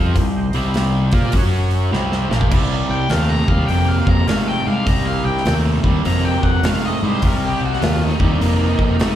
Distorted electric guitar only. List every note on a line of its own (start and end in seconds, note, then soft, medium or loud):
0.00 0.15 F3 medium
0.00 0.16 C4 loud
0.00 0.15 F4 medium
0.16 0.46 C3 medium
0.16 0.47 G3 medium
0.54 1.12 C3 medium
0.54 1.12 G3 loud
0.54 1.12 C4 medium
1.13 1.33 A#3 medium
1.13 1.33 F4 medium
1.13 1.34 A#4 medium
1.34 1.92 F#3 medium
1.34 1.92 C#4 loud
1.34 1.92 F#4 loud
1.92 2.29 C3 medium
1.92 2.29 G3 loud
1.92 2.30 C4 medium
2.30 2.50 A#2 medium
2.30 2.50 F3 medium
2.30 2.51 A#3 medium
2.50 3.06 C3 medium
2.50 3.06 G3 medium
3.09 3.44 C3 medium
3.09 3.45 A3 medium
3.48 3.67 C3 medium
3.48 3.67 G3 medium
3.70 4.25 C3 medium
3.70 4.25 A#3 medium
4.28 4.63 C3 medium
4.28 4.63 A3 medium
4.65 4.85 C3 medium
4.65 4.85 G3 medium
4.86 5.41 C3 medium
4.86 5.42 G3 medium
5.45 5.80 C3 medium
5.45 5.80 A3 medium
5.83 6.02 C3 medium
5.83 6.02 G3 medium
6.04 6.59 C3 medium
6.04 6.59 A#3 medium
6.63 6.98 C3 medium
6.63 6.99 A3 medium
7.02 7.20 C3 medium
7.02 7.21 G3 medium
7.22 7.77 C3 medium
7.22 7.77 G3 medium
7.80 8.15 C3 medium
7.80 8.16 A3 medium
8.19 8.38 C3 medium
8.19 8.38 G3 medium
8.40 8.95 C3 medium
8.40 8.95 A#3 medium
9.00 9.15 C3 medium
9.00 9.15 A3 medium